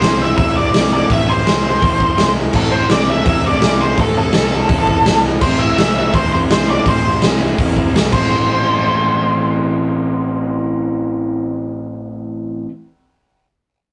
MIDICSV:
0, 0, Header, 1, 5, 480
1, 0, Start_track
1, 0, Key_signature, 0, "minor"
1, 0, Tempo, 359928
1, 1456, Time_signature, 4, 2, 24, 8
1, 18573, End_track
2, 0, Start_track
2, 0, Title_t, "Lead electric guitar"
2, 0, Program_c, 0, 29
2, 0, Note_on_c, 0, 72, 99
2, 273, Note_off_c, 0, 72, 0
2, 290, Note_on_c, 0, 76, 97
2, 483, Note_off_c, 0, 76, 0
2, 499, Note_on_c, 0, 76, 105
2, 722, Note_off_c, 0, 76, 0
2, 756, Note_on_c, 0, 74, 96
2, 1235, Note_off_c, 0, 74, 0
2, 1251, Note_on_c, 0, 74, 85
2, 1484, Note_off_c, 0, 74, 0
2, 1484, Note_on_c, 0, 76, 106
2, 1717, Note_off_c, 0, 76, 0
2, 1728, Note_on_c, 0, 72, 83
2, 3098, Note_off_c, 0, 72, 0
2, 3412, Note_on_c, 0, 69, 81
2, 3618, Note_off_c, 0, 69, 0
2, 3618, Note_on_c, 0, 72, 82
2, 3857, Note_off_c, 0, 72, 0
2, 3883, Note_on_c, 0, 74, 82
2, 4129, Note_off_c, 0, 74, 0
2, 4129, Note_on_c, 0, 76, 98
2, 4354, Note_off_c, 0, 76, 0
2, 4370, Note_on_c, 0, 76, 108
2, 4601, Note_off_c, 0, 76, 0
2, 4621, Note_on_c, 0, 74, 96
2, 5078, Note_on_c, 0, 72, 87
2, 5094, Note_off_c, 0, 74, 0
2, 5316, Note_off_c, 0, 72, 0
2, 5344, Note_on_c, 0, 69, 87
2, 5560, Note_off_c, 0, 69, 0
2, 5576, Note_on_c, 0, 69, 90
2, 6948, Note_off_c, 0, 69, 0
2, 7221, Note_on_c, 0, 72, 86
2, 7455, Note_on_c, 0, 76, 98
2, 7470, Note_off_c, 0, 72, 0
2, 7933, Note_off_c, 0, 76, 0
2, 7949, Note_on_c, 0, 76, 87
2, 8195, Note_off_c, 0, 76, 0
2, 8196, Note_on_c, 0, 72, 93
2, 8420, Note_off_c, 0, 72, 0
2, 8436, Note_on_c, 0, 72, 88
2, 8502, Note_off_c, 0, 72, 0
2, 8691, Note_on_c, 0, 72, 100
2, 8926, Note_off_c, 0, 72, 0
2, 8926, Note_on_c, 0, 74, 79
2, 9164, Note_off_c, 0, 74, 0
2, 9176, Note_on_c, 0, 72, 77
2, 9610, Note_off_c, 0, 72, 0
2, 10840, Note_on_c, 0, 72, 82
2, 15927, Note_off_c, 0, 72, 0
2, 18573, End_track
3, 0, Start_track
3, 0, Title_t, "Overdriven electric guitar"
3, 0, Program_c, 1, 29
3, 0, Note_on_c, 1, 45, 86
3, 0, Note_on_c, 1, 52, 79
3, 20, Note_on_c, 1, 57, 88
3, 32, Note_on_c, 1, 60, 83
3, 45, Note_on_c, 1, 64, 90
3, 230, Note_off_c, 1, 64, 0
3, 235, Note_on_c, 1, 64, 75
3, 263, Note_off_c, 1, 60, 0
3, 268, Note_on_c, 1, 60, 73
3, 283, Note_off_c, 1, 57, 0
3, 288, Note_on_c, 1, 57, 64
3, 484, Note_off_c, 1, 45, 0
3, 490, Note_on_c, 1, 45, 90
3, 492, Note_off_c, 1, 52, 0
3, 498, Note_on_c, 1, 52, 95
3, 504, Note_off_c, 1, 57, 0
3, 510, Note_on_c, 1, 57, 92
3, 523, Note_off_c, 1, 60, 0
3, 525, Note_off_c, 1, 64, 0
3, 529, Note_on_c, 1, 60, 98
3, 530, Note_on_c, 1, 64, 97
3, 730, Note_off_c, 1, 64, 0
3, 736, Note_on_c, 1, 64, 78
3, 757, Note_off_c, 1, 60, 0
3, 762, Note_on_c, 1, 60, 68
3, 785, Note_off_c, 1, 57, 0
3, 790, Note_on_c, 1, 57, 56
3, 963, Note_off_c, 1, 52, 0
3, 969, Note_on_c, 1, 52, 72
3, 989, Note_off_c, 1, 57, 0
3, 994, Note_on_c, 1, 57, 88
3, 999, Note_off_c, 1, 60, 0
3, 1004, Note_on_c, 1, 60, 81
3, 1008, Note_off_c, 1, 64, 0
3, 1013, Note_on_c, 1, 64, 88
3, 1442, Note_off_c, 1, 45, 0
3, 1448, Note_on_c, 1, 45, 86
3, 1457, Note_off_c, 1, 52, 0
3, 1462, Note_on_c, 1, 52, 102
3, 1469, Note_off_c, 1, 57, 0
3, 1469, Note_off_c, 1, 60, 0
3, 1474, Note_on_c, 1, 60, 86
3, 1475, Note_on_c, 1, 57, 94
3, 1487, Note_off_c, 1, 64, 0
3, 1492, Note_on_c, 1, 64, 100
3, 1682, Note_off_c, 1, 64, 0
3, 1687, Note_on_c, 1, 64, 84
3, 1709, Note_off_c, 1, 60, 0
3, 1714, Note_on_c, 1, 60, 78
3, 1731, Note_off_c, 1, 57, 0
3, 1736, Note_on_c, 1, 57, 65
3, 1913, Note_off_c, 1, 52, 0
3, 1918, Note_on_c, 1, 52, 75
3, 1941, Note_off_c, 1, 57, 0
3, 1947, Note_on_c, 1, 57, 75
3, 1948, Note_off_c, 1, 60, 0
3, 1953, Note_on_c, 1, 60, 76
3, 1962, Note_off_c, 1, 64, 0
3, 1967, Note_on_c, 1, 64, 75
3, 2156, Note_off_c, 1, 64, 0
3, 2161, Note_on_c, 1, 64, 82
3, 2186, Note_off_c, 1, 60, 0
3, 2191, Note_on_c, 1, 60, 70
3, 2210, Note_off_c, 1, 57, 0
3, 2216, Note_on_c, 1, 57, 62
3, 2405, Note_off_c, 1, 45, 0
3, 2410, Note_on_c, 1, 45, 87
3, 2416, Note_off_c, 1, 52, 0
3, 2421, Note_on_c, 1, 52, 91
3, 2432, Note_off_c, 1, 57, 0
3, 2437, Note_on_c, 1, 57, 90
3, 2440, Note_off_c, 1, 60, 0
3, 2446, Note_on_c, 1, 60, 99
3, 2459, Note_off_c, 1, 64, 0
3, 2464, Note_on_c, 1, 64, 95
3, 2660, Note_off_c, 1, 64, 0
3, 2666, Note_on_c, 1, 64, 76
3, 2680, Note_off_c, 1, 60, 0
3, 2685, Note_on_c, 1, 60, 68
3, 2699, Note_off_c, 1, 57, 0
3, 2704, Note_on_c, 1, 57, 53
3, 2873, Note_off_c, 1, 52, 0
3, 2879, Note_on_c, 1, 52, 87
3, 2890, Note_off_c, 1, 57, 0
3, 2895, Note_on_c, 1, 57, 89
3, 2911, Note_off_c, 1, 60, 0
3, 2917, Note_on_c, 1, 60, 89
3, 2919, Note_off_c, 1, 64, 0
3, 2925, Note_on_c, 1, 64, 84
3, 3352, Note_off_c, 1, 45, 0
3, 3358, Note_on_c, 1, 45, 88
3, 3364, Note_off_c, 1, 52, 0
3, 3369, Note_on_c, 1, 52, 88
3, 3373, Note_off_c, 1, 57, 0
3, 3379, Note_on_c, 1, 57, 96
3, 3384, Note_off_c, 1, 60, 0
3, 3390, Note_on_c, 1, 60, 95
3, 3404, Note_off_c, 1, 64, 0
3, 3410, Note_on_c, 1, 64, 101
3, 3591, Note_off_c, 1, 64, 0
3, 3596, Note_on_c, 1, 64, 71
3, 3614, Note_off_c, 1, 60, 0
3, 3619, Note_on_c, 1, 60, 68
3, 3635, Note_off_c, 1, 57, 0
3, 3640, Note_on_c, 1, 57, 72
3, 3842, Note_off_c, 1, 52, 0
3, 3847, Note_on_c, 1, 52, 81
3, 3858, Note_off_c, 1, 57, 0
3, 3864, Note_on_c, 1, 57, 76
3, 3870, Note_off_c, 1, 60, 0
3, 3875, Note_on_c, 1, 60, 86
3, 3885, Note_off_c, 1, 64, 0
3, 3890, Note_on_c, 1, 64, 75
3, 4075, Note_off_c, 1, 64, 0
3, 4081, Note_on_c, 1, 64, 78
3, 4094, Note_off_c, 1, 60, 0
3, 4099, Note_on_c, 1, 60, 75
3, 4115, Note_off_c, 1, 57, 0
3, 4120, Note_on_c, 1, 57, 57
3, 4300, Note_off_c, 1, 45, 0
3, 4305, Note_on_c, 1, 45, 85
3, 4316, Note_off_c, 1, 52, 0
3, 4321, Note_on_c, 1, 52, 85
3, 4333, Note_off_c, 1, 57, 0
3, 4338, Note_off_c, 1, 60, 0
3, 4338, Note_on_c, 1, 57, 87
3, 4343, Note_on_c, 1, 60, 96
3, 4347, Note_off_c, 1, 64, 0
3, 4353, Note_on_c, 1, 64, 100
3, 4555, Note_off_c, 1, 64, 0
3, 4561, Note_on_c, 1, 64, 68
3, 4580, Note_off_c, 1, 60, 0
3, 4585, Note_on_c, 1, 60, 70
3, 4596, Note_off_c, 1, 57, 0
3, 4601, Note_on_c, 1, 57, 60
3, 4780, Note_off_c, 1, 52, 0
3, 4785, Note_on_c, 1, 52, 84
3, 4790, Note_off_c, 1, 57, 0
3, 4795, Note_on_c, 1, 57, 80
3, 4816, Note_off_c, 1, 60, 0
3, 4821, Note_on_c, 1, 60, 88
3, 4825, Note_off_c, 1, 64, 0
3, 4830, Note_on_c, 1, 64, 93
3, 5269, Note_off_c, 1, 45, 0
3, 5275, Note_on_c, 1, 45, 85
3, 5285, Note_off_c, 1, 52, 0
3, 5291, Note_on_c, 1, 52, 80
3, 5293, Note_off_c, 1, 57, 0
3, 5299, Note_on_c, 1, 57, 98
3, 5301, Note_off_c, 1, 60, 0
3, 5306, Note_on_c, 1, 60, 84
3, 5312, Note_off_c, 1, 64, 0
3, 5317, Note_on_c, 1, 64, 89
3, 5519, Note_off_c, 1, 64, 0
3, 5524, Note_on_c, 1, 64, 77
3, 5548, Note_off_c, 1, 60, 0
3, 5554, Note_on_c, 1, 60, 71
3, 5572, Note_off_c, 1, 57, 0
3, 5577, Note_on_c, 1, 57, 65
3, 5755, Note_off_c, 1, 52, 0
3, 5760, Note_on_c, 1, 52, 78
3, 5767, Note_off_c, 1, 57, 0
3, 5772, Note_on_c, 1, 57, 81
3, 5784, Note_off_c, 1, 60, 0
3, 5789, Note_on_c, 1, 60, 93
3, 5802, Note_off_c, 1, 64, 0
3, 5807, Note_on_c, 1, 64, 88
3, 5983, Note_off_c, 1, 64, 0
3, 5988, Note_on_c, 1, 64, 72
3, 6008, Note_off_c, 1, 60, 0
3, 6013, Note_on_c, 1, 60, 73
3, 6025, Note_off_c, 1, 57, 0
3, 6030, Note_on_c, 1, 57, 63
3, 6233, Note_off_c, 1, 45, 0
3, 6238, Note_on_c, 1, 45, 87
3, 6241, Note_off_c, 1, 52, 0
3, 6246, Note_on_c, 1, 52, 95
3, 6254, Note_off_c, 1, 57, 0
3, 6259, Note_on_c, 1, 57, 100
3, 6271, Note_off_c, 1, 64, 0
3, 6273, Note_off_c, 1, 60, 0
3, 6276, Note_on_c, 1, 64, 105
3, 6278, Note_on_c, 1, 60, 97
3, 6467, Note_off_c, 1, 64, 0
3, 6472, Note_on_c, 1, 64, 77
3, 6497, Note_off_c, 1, 60, 0
3, 6503, Note_on_c, 1, 60, 70
3, 6519, Note_off_c, 1, 57, 0
3, 6525, Note_on_c, 1, 57, 59
3, 6730, Note_off_c, 1, 52, 0
3, 6735, Note_on_c, 1, 52, 79
3, 6745, Note_off_c, 1, 57, 0
3, 6750, Note_on_c, 1, 57, 87
3, 6755, Note_off_c, 1, 60, 0
3, 6760, Note_on_c, 1, 60, 91
3, 6771, Note_off_c, 1, 64, 0
3, 6777, Note_on_c, 1, 64, 90
3, 7215, Note_off_c, 1, 45, 0
3, 7221, Note_on_c, 1, 45, 79
3, 7226, Note_off_c, 1, 52, 0
3, 7232, Note_on_c, 1, 52, 94
3, 7238, Note_off_c, 1, 57, 0
3, 7243, Note_on_c, 1, 57, 94
3, 7251, Note_off_c, 1, 60, 0
3, 7256, Note_on_c, 1, 60, 106
3, 7265, Note_off_c, 1, 64, 0
3, 7270, Note_on_c, 1, 64, 96
3, 7438, Note_off_c, 1, 64, 0
3, 7443, Note_on_c, 1, 64, 81
3, 7465, Note_off_c, 1, 60, 0
3, 7471, Note_on_c, 1, 60, 80
3, 7487, Note_off_c, 1, 57, 0
3, 7493, Note_on_c, 1, 57, 66
3, 7686, Note_off_c, 1, 52, 0
3, 7691, Note_on_c, 1, 52, 75
3, 7710, Note_off_c, 1, 57, 0
3, 7715, Note_on_c, 1, 57, 75
3, 7727, Note_off_c, 1, 60, 0
3, 7733, Note_on_c, 1, 60, 79
3, 7735, Note_off_c, 1, 64, 0
3, 7740, Note_on_c, 1, 64, 87
3, 7944, Note_off_c, 1, 64, 0
3, 7949, Note_on_c, 1, 64, 76
3, 7969, Note_off_c, 1, 60, 0
3, 7975, Note_on_c, 1, 60, 74
3, 7989, Note_off_c, 1, 57, 0
3, 7995, Note_on_c, 1, 57, 69
3, 8183, Note_off_c, 1, 45, 0
3, 8188, Note_on_c, 1, 45, 94
3, 8200, Note_off_c, 1, 52, 0
3, 8206, Note_on_c, 1, 52, 95
3, 8213, Note_off_c, 1, 57, 0
3, 8219, Note_on_c, 1, 57, 103
3, 8224, Note_off_c, 1, 60, 0
3, 8229, Note_on_c, 1, 60, 111
3, 8237, Note_off_c, 1, 64, 0
3, 8243, Note_on_c, 1, 64, 104
3, 8428, Note_off_c, 1, 64, 0
3, 8433, Note_on_c, 1, 64, 81
3, 8443, Note_off_c, 1, 60, 0
3, 8449, Note_on_c, 1, 60, 70
3, 8469, Note_off_c, 1, 57, 0
3, 8474, Note_on_c, 1, 57, 60
3, 8678, Note_off_c, 1, 52, 0
3, 8684, Note_on_c, 1, 52, 78
3, 8695, Note_off_c, 1, 57, 0
3, 8700, Note_on_c, 1, 57, 86
3, 8705, Note_off_c, 1, 60, 0
3, 8711, Note_on_c, 1, 60, 82
3, 8719, Note_off_c, 1, 64, 0
3, 8725, Note_on_c, 1, 64, 86
3, 9133, Note_off_c, 1, 45, 0
3, 9138, Note_off_c, 1, 52, 0
3, 9139, Note_on_c, 1, 45, 89
3, 9148, Note_off_c, 1, 57, 0
3, 9154, Note_on_c, 1, 52, 97
3, 9160, Note_off_c, 1, 60, 0
3, 9164, Note_on_c, 1, 57, 93
3, 9176, Note_on_c, 1, 60, 86
3, 9178, Note_off_c, 1, 64, 0
3, 9194, Note_on_c, 1, 64, 88
3, 9358, Note_off_c, 1, 64, 0
3, 9374, Note_on_c, 1, 64, 83
3, 9386, Note_off_c, 1, 60, 0
3, 9402, Note_on_c, 1, 60, 61
3, 9407, Note_off_c, 1, 57, 0
3, 9423, Note_on_c, 1, 57, 57
3, 9609, Note_off_c, 1, 52, 0
3, 9624, Note_off_c, 1, 45, 0
3, 9625, Note_on_c, 1, 52, 70
3, 9632, Note_off_c, 1, 57, 0
3, 9647, Note_off_c, 1, 60, 0
3, 9648, Note_on_c, 1, 57, 79
3, 9655, Note_off_c, 1, 64, 0
3, 9663, Note_on_c, 1, 60, 76
3, 9671, Note_on_c, 1, 64, 83
3, 9856, Note_off_c, 1, 64, 0
3, 9872, Note_on_c, 1, 64, 85
3, 9879, Note_off_c, 1, 60, 0
3, 9895, Note_on_c, 1, 60, 64
3, 9903, Note_off_c, 1, 57, 0
3, 9919, Note_on_c, 1, 57, 59
3, 10101, Note_off_c, 1, 52, 0
3, 10103, Note_on_c, 1, 45, 83
3, 10117, Note_on_c, 1, 52, 86
3, 10118, Note_off_c, 1, 57, 0
3, 10128, Note_off_c, 1, 60, 0
3, 10129, Note_off_c, 1, 64, 0
3, 10134, Note_on_c, 1, 57, 93
3, 10144, Note_on_c, 1, 60, 89
3, 10145, Note_on_c, 1, 64, 87
3, 10337, Note_off_c, 1, 64, 0
3, 10353, Note_on_c, 1, 64, 71
3, 10357, Note_off_c, 1, 60, 0
3, 10373, Note_on_c, 1, 60, 75
3, 10386, Note_off_c, 1, 57, 0
3, 10402, Note_on_c, 1, 57, 61
3, 10576, Note_off_c, 1, 52, 0
3, 10586, Note_off_c, 1, 45, 0
3, 10592, Note_off_c, 1, 57, 0
3, 10592, Note_on_c, 1, 52, 75
3, 10608, Note_on_c, 1, 57, 88
3, 10614, Note_off_c, 1, 60, 0
3, 10630, Note_off_c, 1, 64, 0
3, 10630, Note_on_c, 1, 60, 94
3, 10646, Note_on_c, 1, 64, 81
3, 10827, Note_off_c, 1, 52, 0
3, 10833, Note_on_c, 1, 45, 96
3, 10839, Note_off_c, 1, 57, 0
3, 10843, Note_on_c, 1, 52, 111
3, 10845, Note_off_c, 1, 60, 0
3, 10858, Note_off_c, 1, 64, 0
3, 10861, Note_on_c, 1, 60, 112
3, 10863, Note_on_c, 1, 57, 101
3, 10885, Note_on_c, 1, 64, 99
3, 16910, Note_off_c, 1, 45, 0
3, 16915, Note_off_c, 1, 52, 0
3, 16924, Note_off_c, 1, 60, 0
3, 16925, Note_off_c, 1, 57, 0
3, 16936, Note_off_c, 1, 64, 0
3, 18573, End_track
4, 0, Start_track
4, 0, Title_t, "Picked electric bass"
4, 0, Program_c, 2, 34
4, 0, Note_on_c, 2, 36, 96
4, 393, Note_off_c, 2, 36, 0
4, 497, Note_on_c, 2, 40, 91
4, 885, Note_off_c, 2, 40, 0
4, 952, Note_on_c, 2, 36, 96
4, 1349, Note_off_c, 2, 36, 0
4, 1459, Note_on_c, 2, 33, 88
4, 1845, Note_off_c, 2, 33, 0
4, 1935, Note_on_c, 2, 36, 82
4, 2323, Note_off_c, 2, 36, 0
4, 2424, Note_on_c, 2, 40, 101
4, 2808, Note_off_c, 2, 40, 0
4, 2886, Note_on_c, 2, 36, 92
4, 3278, Note_off_c, 2, 36, 0
4, 3375, Note_on_c, 2, 33, 102
4, 3763, Note_off_c, 2, 33, 0
4, 3853, Note_on_c, 2, 36, 86
4, 4243, Note_off_c, 2, 36, 0
4, 4337, Note_on_c, 2, 40, 90
4, 4725, Note_off_c, 2, 40, 0
4, 4819, Note_on_c, 2, 36, 97
4, 5207, Note_off_c, 2, 36, 0
4, 5299, Note_on_c, 2, 33, 91
4, 5688, Note_off_c, 2, 33, 0
4, 5770, Note_on_c, 2, 36, 91
4, 6163, Note_off_c, 2, 36, 0
4, 6252, Note_on_c, 2, 40, 86
4, 6644, Note_off_c, 2, 40, 0
4, 6720, Note_on_c, 2, 36, 98
4, 7117, Note_off_c, 2, 36, 0
4, 7217, Note_on_c, 2, 33, 91
4, 7608, Note_off_c, 2, 33, 0
4, 7680, Note_on_c, 2, 36, 98
4, 8079, Note_off_c, 2, 36, 0
4, 8170, Note_on_c, 2, 40, 100
4, 8565, Note_off_c, 2, 40, 0
4, 8620, Note_on_c, 2, 36, 95
4, 9027, Note_off_c, 2, 36, 0
4, 9141, Note_on_c, 2, 33, 105
4, 9532, Note_off_c, 2, 33, 0
4, 9613, Note_on_c, 2, 36, 102
4, 10007, Note_off_c, 2, 36, 0
4, 10104, Note_on_c, 2, 40, 93
4, 10494, Note_off_c, 2, 40, 0
4, 10559, Note_on_c, 2, 36, 101
4, 10765, Note_off_c, 2, 36, 0
4, 10827, Note_on_c, 2, 33, 90
4, 16854, Note_off_c, 2, 33, 0
4, 18573, End_track
5, 0, Start_track
5, 0, Title_t, "Drums"
5, 21, Note_on_c, 9, 46, 59
5, 29, Note_on_c, 9, 38, 98
5, 154, Note_off_c, 9, 46, 0
5, 162, Note_off_c, 9, 38, 0
5, 497, Note_on_c, 9, 46, 65
5, 503, Note_on_c, 9, 36, 123
5, 631, Note_off_c, 9, 46, 0
5, 637, Note_off_c, 9, 36, 0
5, 984, Note_on_c, 9, 46, 62
5, 992, Note_on_c, 9, 38, 116
5, 1118, Note_off_c, 9, 46, 0
5, 1126, Note_off_c, 9, 38, 0
5, 1468, Note_on_c, 9, 36, 96
5, 1470, Note_on_c, 9, 46, 57
5, 1602, Note_off_c, 9, 36, 0
5, 1604, Note_off_c, 9, 46, 0
5, 1953, Note_on_c, 9, 46, 52
5, 1961, Note_on_c, 9, 38, 98
5, 2087, Note_off_c, 9, 46, 0
5, 2095, Note_off_c, 9, 38, 0
5, 2431, Note_on_c, 9, 36, 122
5, 2444, Note_on_c, 9, 46, 62
5, 2565, Note_off_c, 9, 36, 0
5, 2577, Note_off_c, 9, 46, 0
5, 2670, Note_on_c, 9, 36, 85
5, 2804, Note_off_c, 9, 36, 0
5, 2902, Note_on_c, 9, 46, 62
5, 2910, Note_on_c, 9, 38, 114
5, 3035, Note_off_c, 9, 46, 0
5, 3043, Note_off_c, 9, 38, 0
5, 3373, Note_on_c, 9, 49, 86
5, 3384, Note_on_c, 9, 36, 108
5, 3507, Note_off_c, 9, 49, 0
5, 3517, Note_off_c, 9, 36, 0
5, 3856, Note_on_c, 9, 46, 58
5, 3864, Note_on_c, 9, 38, 109
5, 3990, Note_off_c, 9, 46, 0
5, 3998, Note_off_c, 9, 38, 0
5, 4340, Note_on_c, 9, 46, 65
5, 4345, Note_on_c, 9, 36, 111
5, 4473, Note_off_c, 9, 46, 0
5, 4478, Note_off_c, 9, 36, 0
5, 4820, Note_on_c, 9, 46, 62
5, 4828, Note_on_c, 9, 38, 118
5, 4953, Note_off_c, 9, 46, 0
5, 4961, Note_off_c, 9, 38, 0
5, 5301, Note_on_c, 9, 46, 61
5, 5304, Note_on_c, 9, 36, 99
5, 5435, Note_off_c, 9, 46, 0
5, 5437, Note_off_c, 9, 36, 0
5, 5766, Note_on_c, 9, 46, 53
5, 5774, Note_on_c, 9, 38, 102
5, 5899, Note_off_c, 9, 46, 0
5, 5907, Note_off_c, 9, 38, 0
5, 6257, Note_on_c, 9, 36, 121
5, 6257, Note_on_c, 9, 46, 60
5, 6391, Note_off_c, 9, 36, 0
5, 6391, Note_off_c, 9, 46, 0
5, 6499, Note_on_c, 9, 36, 74
5, 6632, Note_off_c, 9, 36, 0
5, 6743, Note_on_c, 9, 46, 63
5, 6751, Note_on_c, 9, 38, 121
5, 6876, Note_off_c, 9, 46, 0
5, 6884, Note_off_c, 9, 38, 0
5, 7218, Note_on_c, 9, 49, 100
5, 7220, Note_on_c, 9, 36, 111
5, 7351, Note_off_c, 9, 49, 0
5, 7353, Note_off_c, 9, 36, 0
5, 7706, Note_on_c, 9, 46, 55
5, 7714, Note_on_c, 9, 38, 110
5, 7840, Note_off_c, 9, 46, 0
5, 7848, Note_off_c, 9, 38, 0
5, 8182, Note_on_c, 9, 46, 64
5, 8184, Note_on_c, 9, 36, 114
5, 8316, Note_off_c, 9, 46, 0
5, 8318, Note_off_c, 9, 36, 0
5, 8670, Note_on_c, 9, 46, 63
5, 8678, Note_on_c, 9, 38, 114
5, 8803, Note_off_c, 9, 46, 0
5, 8811, Note_off_c, 9, 38, 0
5, 9146, Note_on_c, 9, 46, 63
5, 9147, Note_on_c, 9, 36, 102
5, 9279, Note_off_c, 9, 46, 0
5, 9281, Note_off_c, 9, 36, 0
5, 9624, Note_on_c, 9, 46, 57
5, 9632, Note_on_c, 9, 38, 107
5, 9758, Note_off_c, 9, 46, 0
5, 9766, Note_off_c, 9, 38, 0
5, 10115, Note_on_c, 9, 36, 118
5, 10118, Note_on_c, 9, 46, 58
5, 10249, Note_off_c, 9, 36, 0
5, 10252, Note_off_c, 9, 46, 0
5, 10356, Note_on_c, 9, 36, 79
5, 10489, Note_off_c, 9, 36, 0
5, 10607, Note_on_c, 9, 46, 63
5, 10615, Note_on_c, 9, 38, 109
5, 10741, Note_off_c, 9, 46, 0
5, 10749, Note_off_c, 9, 38, 0
5, 10836, Note_on_c, 9, 36, 97
5, 10840, Note_on_c, 9, 49, 82
5, 10969, Note_off_c, 9, 36, 0
5, 10973, Note_off_c, 9, 49, 0
5, 18573, End_track
0, 0, End_of_file